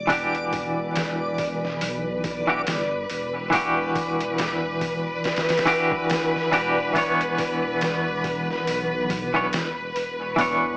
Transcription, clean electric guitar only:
0.07 2.42 E3 medium
0.07 2.43 D4 medium
0.07 2.43 F#4 medium
0.12 2.44 G4 medium
2.47 2.58 E3 medium
2.47 2.59 D4 medium
2.47 2.59 F#4 medium
2.47 2.59 G4 medium
3.50 5.61 E3 medium
3.50 5.62 D4 medium
3.50 5.63 F#4 medium
3.55 5.64 G4 medium
5.66 6.48 E3 medium
5.66 6.48 D4 medium
5.66 6.48 F#4 medium
5.66 6.49 G4 medium
6.51 6.91 E3 medium
6.51 6.91 D4 medium
6.51 6.91 F#4 medium
6.51 6.92 G4 medium
6.93 9.28 E3 medium
6.93 9.28 B3 medium
6.93 9.29 D4 medium
6.98 9.30 C#5 medium
9.34 9.44 E3 medium
9.34 9.45 B3 medium
9.34 9.45 D4 medium
9.34 9.46 C#5 medium
10.36 10.77 E3 medium
10.36 10.77 B3 medium
10.36 10.77 D4 medium
10.41 10.77 C#5 medium

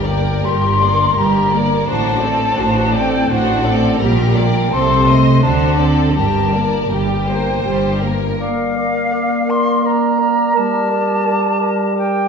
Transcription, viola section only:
0.05 0.44 A#3 soft
0.43 0.80 G3 soft
0.81 1.17 A#3 soft
1.17 1.50 G3 soft
1.53 1.88 A#3 soft
1.88 2.21 D4 soft
2.23 2.59 C4 soft
2.59 2.95 D4 soft
2.94 3.30 C4 soft
3.30 3.63 D4 soft
3.66 4.01 C4 soft
4.00 4.34 G3 soft
4.36 4.73 A#3 soft
4.73 5.06 C4 soft
5.08 5.43 A3 soft
5.43 5.77 D4 soft
5.78 6.16 C4 soft
6.16 6.51 G3 soft
6.54 6.91 A#3 soft
6.90 7.27 G3 soft
7.27 7.65 A#3 soft
7.64 8.00 G3 soft
8.03 8.40 A#3 soft

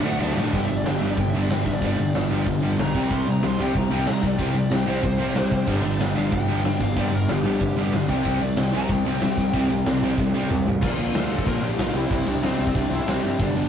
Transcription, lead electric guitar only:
0.00 0.18 F#5 medium
0.55 0.65 G5 medium
0.65 0.77 E5 medium
0.77 0.86 D5 medium
0.87 0.97 G5 medium
0.99 1.09 E5 medium
1.09 1.18 D5 medium
1.20 1.30 G5 medium
1.30 1.41 E5 medium
1.41 1.50 D5 medium
1.52 1.61 G5 medium
1.62 1.72 E5 medium
1.73 1.83 D5 medium
1.85 2.15 D5 medium
2.81 3.11 A#5 loud
3.14 3.28 C6 medium
3.30 3.44 A#5 medium
3.46 3.60 C6 medium
3.62 3.76 G5 medium
3.78 3.92 A#5 medium
3.93 4.08 G5 medium
4.10 4.24 A#5 loud
4.27 4.41 D5 medium
4.43 4.57 G5 medium
4.58 4.73 D5 medium
4.73 4.88 G5 medium
4.89 5.04 C5 loud
5.05 5.67 C5 loud
6.18 6.33 F5 loud
6.34 6.80 G5 loud
6.83 6.97 F5 medium
6.99 7.14 D5 medium
7.15 7.30 A#4 medium
7.31 7.93 G4 loud
8.10 8.41 G5 loud
8.42 8.58 D5 loud
8.59 8.74 G5 loud
8.76 8.90 A#5 medium
8.92 9.85 G5 loud
10.82 11.32 F4 loud
11.31 11.48 A4 medium
11.48 11.63 A#4 medium
11.64 11.81 G4 medium
11.81 11.96 F4 loud
11.96 12.12 E4 medium
12.13 12.29 E4 medium
12.28 12.44 D4 medium
12.45 12.60 C4 loud
12.61 12.77 C4 medium
12.78 12.94 D4 medium
12.94 13.09 E4 medium
13.10 13.31 G4 loud
13.43 13.69 D4 loud

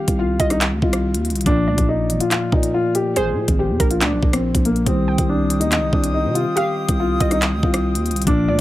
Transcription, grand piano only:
0.00 0.15 G4 loud
0.19 0.49 F4 medium
0.51 0.60 D#4 medium
0.83 1.43 F4 medium
1.46 1.86 D4 loud
1.89 2.19 D#4 medium
2.21 2.30 F4 medium
2.31 2.49 F4 medium
2.52 2.70 D#4 medium
2.74 2.92 F4 medium
2.95 3.13 G4 medium
3.16 3.56 G#4 loud
3.59 3.89 G4 medium
3.91 4.00 F4 medium
4.01 4.31 D4 medium
4.33 4.63 C4 medium
4.65 4.83 A#3 medium
4.86 5.26 C4 medium
5.29 5.59 D4 medium
5.60 5.70 D#4 medium
5.72 5.90 D#4 medium
5.93 6.11 D4 medium
6.14 6.32 D#4 medium
6.35 6.53 F4 medium
6.56 6.96 G4 loud
7.00 7.30 F4 medium
7.32 7.40 D#4 medium
7.64 8.24 F4 medium
8.27 8.61 D4 loud

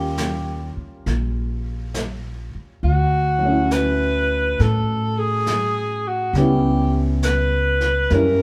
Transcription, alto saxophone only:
0.00 0.78 G4 medium
2.84 3.74 F#4 medium
3.73 4.63 B4 medium
4.61 5.20 A4 medium
5.19 6.09 G#4 medium
6.08 6.36 F#4 medium
6.37 7.03 G4 medium
7.24 8.13 B4 medium
8.12 8.42 A#4 medium

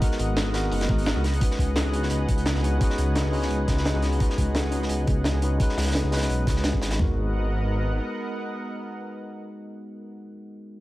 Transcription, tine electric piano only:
0.00 0.53 G#3 medium
0.00 0.54 B3 medium
0.00 0.02 D#4 medium
0.00 0.52 D#4 medium
0.00 0.03 F#4 medium
0.00 0.53 F#4 medium
0.00 0.04 A#4 medium
0.04 0.53 A#4 medium
0.53 0.87 G#3 medium
0.53 0.87 B3 medium
0.53 0.87 D#4 medium
0.53 0.88 F#4 medium
0.53 0.88 A#4 loud
0.88 1.13 G#3 medium
0.88 1.13 B3 medium
0.88 1.14 D#4 medium
0.88 1.14 F#4 medium
0.88 1.14 A#4 medium
1.15 1.22 G#3 medium
1.15 1.23 B3 medium
1.15 1.23 D#4 medium
1.15 1.23 F#4 medium
1.15 1.24 A#4 medium
1.39 1.90 G#3 medium
1.39 1.91 C#4 medium
1.39 1.92 D#4 medium
1.39 1.92 F#4 medium
1.44 1.93 B4 medium
1.91 2.60 G#3 medium
1.91 2.61 C#4 medium
1.91 2.61 D#4 medium
1.91 2.62 F#4 medium
1.96 2.63 B4 medium
2.62 2.72 G#3 medium
2.62 2.73 C#4 medium
2.62 2.73 D#4 medium
2.62 2.73 F#4 medium
2.62 2.74 B4 medium
2.78 3.30 G#3 medium
2.78 3.31 C#4 medium
2.78 3.31 D#4 medium
2.78 3.32 F#4 medium
2.83 3.32 B4 medium
3.32 3.66 G#3 medium
3.32 3.66 C#4 medium
3.32 3.66 D#4 medium
3.32 3.67 F#4 medium
3.32 3.67 B4 medium
3.67 3.92 G#3 medium
3.67 3.92 C#4 medium
3.67 3.93 D#4 medium
3.67 3.93 F#4 medium
3.67 3.93 B4 medium
3.94 4.03 G#3 medium
3.94 4.03 C#4 medium
3.94 4.03 D#4 medium
3.94 4.04 F#4 medium
3.94 4.04 B4 medium
4.18 4.69 G#3 medium
4.18 4.70 C#4 medium
4.18 4.71 D#4 medium
4.18 4.71 F#4 medium
4.23 4.72 B4 medium
4.70 5.39 G#3 medium
4.70 5.40 C#4 medium
4.70 5.41 D#4 medium
4.70 5.41 F#4 medium
4.75 5.42 B4 medium
5.41 5.52 G#3 medium
5.41 5.52 C#4 medium
5.41 5.52 D#4 medium
5.41 5.52 F#4 medium
5.41 5.53 B4 medium
5.58 6.09 G#3 medium
5.58 6.10 C#4 medium
5.58 6.10 D#4 medium
5.58 6.11 F#4 medium
5.62 6.12 B4 medium
6.11 6.43 G#3 medium
6.11 6.45 C#4 medium
6.11 6.46 D#4 medium
6.11 6.46 F#4 medium
6.11 6.46 B4 medium
6.45 6.95 G#3 medium
6.45 6.97 C#4 medium
6.45 6.97 D#4 medium
6.45 6.98 F#4 medium
6.50 6.99 B4 medium
6.96 10.15 G#3 medium
6.96 10.17 B3 medium
6.96 10.19 D#4 medium
7.01 10.21 F#4 medium
7.01 10.23 A#4 medium

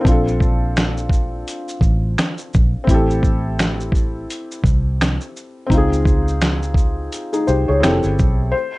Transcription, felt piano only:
0.01 2.82 C4 medium
0.01 2.83 D4 medium
0.08 2.85 F4 medium
0.08 2.87 A4 medium
2.84 5.64 C4 medium
2.84 5.66 E4 medium
2.91 5.68 G4 medium
2.91 5.69 A4 medium
5.67 7.76 C4 medium
5.67 7.08 D#4 medium
5.74 7.10 F4 medium
5.74 7.12 G#4 medium
7.33 7.46 D#4 medium
7.33 7.46 G#4 medium
7.47 7.67 G4 medium
7.47 7.67 C5 medium
7.68 8.02 G#4 medium
7.68 8.01 C#5 medium
7.80 8.52 C4 medium
7.80 8.52 E4 medium
7.80 8.53 G4 medium
7.86 8.54 A4 medium
8.52 8.78 C5 medium

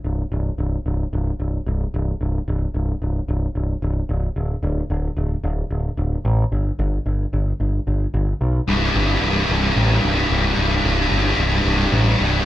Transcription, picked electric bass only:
0.04 0.23 C1 medium
0.32 0.50 C1 medium
0.58 0.77 C1 medium
0.86 1.04 C1 medium
1.13 1.31 C1 medium
1.40 1.58 C1 medium
1.66 1.85 C1 medium
1.94 2.12 C1 medium
2.21 2.39 C1 medium
2.48 2.66 C1 medium
2.74 2.93 C1 medium
3.02 3.20 C1 medium
3.28 3.47 C1 medium
3.55 3.74 C1 medium
3.82 4.01 C1 medium
4.09 4.28 C1 medium
4.36 4.55 D1 medium
4.63 4.81 D1 medium
4.90 5.09 D1 medium
5.17 5.35 D1 medium
5.44 5.62 D1 medium
5.70 5.89 D1 medium
5.97 6.16 D1 medium
6.25 6.44 A1 medium
6.52 6.71 G1 medium
6.79 6.98 G1 medium
7.06 7.25 G1 medium
7.33 7.52 G1 medium
7.60 7.79 G1 medium
7.87 8.06 G1 medium
8.14 8.33 G1 medium
8.41 8.60 B1 medium
8.68 8.90 C1 medium
8.95 9.17 G1 medium
9.22 9.43 C1 medium
9.49 9.71 C1 medium
9.76 9.98 A1 medium
10.03 10.25 C1 medium
10.30 10.52 C1 medium
10.57 10.79 C1 medium
10.84 11.06 C1 medium
11.11 11.33 G1 medium
11.38 11.60 C1 medium
11.65 11.87 C1 medium
11.92 12.14 A1 medium
12.19 12.41 C1 medium

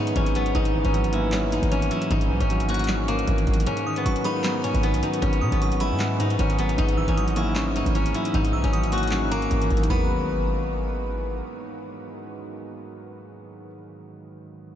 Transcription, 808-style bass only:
0.00 0.13 G#2 loud
0.16 0.53 G#1 loud
0.55 0.83 G#1 loud
0.85 1.59 G#1 loud
1.63 1.90 G#1 loud
2.11 2.32 G#1 loud
2.30 2.40 B1 loud
2.40 3.24 G#1 loud
3.28 3.46 G#1 loud
3.47 3.67 G#1 loud
4.06 4.15 G#1 loud
4.74 4.95 G#1 loud
4.94 5.02 B1 loud
5.22 5.43 G#1 loud
5.42 5.52 B2 loud
5.52 5.93 G#1 loud
5.91 6.37 G#2 loud
6.39 6.77 G#1 loud
6.78 7.07 G#1 loud
7.08 7.83 G#1 loud
7.86 8.14 G#1 loud
8.34 8.55 G#1 loud
8.54 8.63 B1 loud
8.64 9.47 G#1 loud
9.51 9.70 G#1 loud
9.71 9.89 G#1 loud
9.90 11.42 G#1 loud

